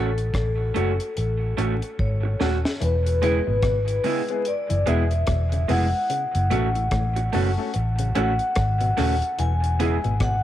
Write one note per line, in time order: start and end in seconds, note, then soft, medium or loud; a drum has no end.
0.00 0.30 A1 medium
0.00 2.37 A4 medium
0.18 closed hi-hat soft
0.34 0.70 A1 loud
0.34 kick loud
0.34 cross-stick loud
0.34 closed hi-hat medium
0.74 0.97 F#1 medium
0.74 0.91 A3 medium
0.74 0.91 C#4 medium
0.74 0.92 C#4 medium
0.74 0.92 F#4 medium
0.74 0.92 F#4 loud
0.74 0.92 A4 medium
0.74 closed hi-hat medium
1.00 closed hi-hat medium
1.17 1.53 A1 medium
1.17 closed hi-hat medium
1.57 1.80 A1 medium
1.57 1.73 A3 medium
1.57 1.74 C#4 medium
1.57 1.74 F#4 medium
1.57 1.74 A4 medium
1.57 closed hi-hat medium
1.82 closed hi-hat soft
1.99 2.35 G#1 medium
1.99 2.84 C#5 medium
1.99 kick loud
2.23 muted clean electric guitar stroke soft
2.40 2.62 D#1 medium
2.40 2.56 A3 medium
2.40 2.56 C#4 medium
2.40 2.56 F#4 medium
2.40 2.57 A4 medium
2.40 snare medium
2.65 snare medium
2.81 3.39 E1 loud
2.81 2.96 E3 medium
2.81 3.22 B4 medium
2.81 closed hi-hat medium
3.06 closed hi-hat medium
3.22 3.37 C#3 medium
3.22 3.38 G#3 medium
3.22 3.38 B3 medium
3.22 3.39 E4 medium
3.22 3.39 E4 loud
3.22 3.39 G#4 medium
3.22 4.50 B4 loud
3.22 closed hi-hat medium
3.47 3.98 G#1 medium
3.47 3.57 B2 medium
3.62 3.79 B2 medium
3.62 kick loud
3.62 cross-stick loud
3.62 closed hi-hat medium
3.88 closed hi-hat soft
4.04 4.20 C#3 medium
4.04 4.20 G#3 medium
4.04 4.21 G#3 medium
4.04 4.21 B3 medium
4.04 4.21 E4 medium
4.04 4.21 E4 loud
4.04 4.21 G#4 medium
4.04 open hi-hat medium
4.28 4.40 G#3 medium
4.28 4.40 B3 medium
4.28 4.40 E4 medium
4.28 4.40 G#4 medium
4.28 closed hi-hat soft
4.45 4.85 D5 medium
4.45 closed hi-hat medium
4.70 4.85 F#1 medium
4.70 4.80 E3 medium
4.70 closed hi-hat medium
4.86 5.23 E1 medium
4.86 5.02 B2 medium
4.86 5.02 G#3 loud
4.86 5.03 G#3 medium
4.86 5.03 B3 medium
4.86 5.03 B3 loud
4.86 5.03 E4 medium
4.86 5.03 E4 loud
4.86 5.03 G#4 loud
4.86 5.72 E5 medium
4.86 closed hi-hat medium
5.11 muted clean electric guitar stroke soft
5.11 closed hi-hat soft
5.27 5.64 E1 medium
5.27 5.43 B2 medium
5.27 kick loud
5.27 cross-stick loud
5.27 closed hi-hat medium
5.52 5.62 C#3 medium
5.52 closed hi-hat soft
5.68 5.91 F1 loud
5.68 5.84 B2 medium
5.68 5.84 G#3 medium
5.68 5.85 G#3 medium
5.68 5.85 B3 medium
5.68 5.85 E4 medium
5.68 5.86 E4 medium
5.68 5.86 G#4 medium
5.68 8.16 F#5 loud
5.68 open hi-hat medium
6.10 6.25 C#3 medium
6.10 closed hi-hat medium
6.35 6.49 F#1 loud
6.35 closed hi-hat medium
6.50 6.88 A1 loud
6.50 6.66 B2 medium
6.50 6.67 A3 medium
6.50 6.67 C#4 medium
6.50 6.68 F#4 medium
6.50 6.67 F#4 loud
6.50 6.68 A4 medium
6.50 closed hi-hat medium
6.75 6.86 A2 medium
6.75 closed hi-hat soft
6.91 7.28 A1 loud
6.91 7.07 A2 medium
6.91 kick loud
6.91 cross-stick loud
6.91 closed hi-hat medium
7.16 muted clean electric guitar stroke soft
7.16 closed hi-hat medium
7.33 7.56 F#1 medium
7.33 7.48 B2 medium
7.33 7.49 A3 medium
7.33 7.50 C#4 medium
7.33 7.50 F#4 medium
7.33 7.50 F#4 loud
7.33 7.50 A4 loud
7.33 open hi-hat soft
7.57 7.68 A3 medium
7.57 7.69 C#4 medium
7.57 7.69 F#4 medium
7.57 7.69 A4 medium
7.74 8.11 A1 loud
7.74 closed hi-hat medium
7.99 8.09 C#3 medium
7.99 closed hi-hat medium
8.15 8.38 A1 loud
8.15 8.31 A2 medium
8.15 8.31 A3 medium
8.15 8.32 C#4 medium
8.15 8.32 C#4 loud
8.15 8.32 F#4 medium
8.15 8.32 F#4 loud
8.15 8.32 A4 medium
8.15 9.36 F#5 medium
8.15 closed hi-hat medium
8.39 closed hi-hat soft
8.55 8.93 G#1 loud
8.55 kick loud
8.55 cross-stick loud
8.55 closed hi-hat loud
8.81 8.91 B2 medium
8.81 closed hi-hat soft
8.97 9.20 D#1 loud
8.97 9.13 C#3 medium
8.97 9.13 A3 loud
8.97 9.14 A3 medium
8.97 9.14 C#4 medium
8.97 9.14 C#4 loud
8.97 9.14 F#4 medium
8.97 9.14 F#4 loud
8.97 9.14 A4 medium
8.97 cross-stick medium
8.97 open hi-hat medium
9.22 closed hi-hat soft
9.39 9.97 E1 loud
9.39 9.54 E3 medium
9.39 10.18 G#5 loud
9.39 closed hi-hat medium
9.64 closed hi-hat soft
9.79 9.95 C#3 medium
9.79 9.96 G#3 medium
9.79 9.96 B3 medium
9.79 9.96 E4 medium
9.79 9.97 G#4 loud
9.79 closed hi-hat medium
10.04 10.43 G#1 medium
10.04 10.15 B2 medium
10.04 closed hi-hat soft
10.20 10.36 B2 medium
10.20 10.43 F#5 loud
10.20 kick loud
10.20 cross-stick loud
10.20 closed hi-hat medium